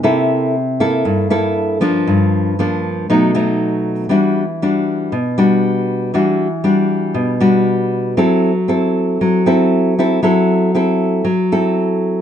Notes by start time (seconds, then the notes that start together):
0.03 C3 A#3 E4 A4
0.80 A#3 E4 A4
1.05 G2
1.30 A#3 E4 A4
1.81 F3 A#3 D4
2.07 G2
2.59 F3 A#3 D4
3.10 B2 F#3 A3 D#4
3.35 F#3 A3 D#4
4.09 E3 G3 D4 F#4
4.62 G3 D4 F#4
5.12 B2
5.38 G3 D4 F#4
6.14 E3 G3 D4 F#4
6.64 G3 D4 F#4
7.14 B2
7.40 G3 D4 F#4
8.17 F#3 C4 E4 A4
8.68 C4 E4 A4
9.21 F#3
9.46 C4 E4 A4
9.99 C4 E4 A4
10.23 F#3 C4 E4 A4
10.75 C4 E4 A4
11.25 F#3
11.52 C4 E4 A4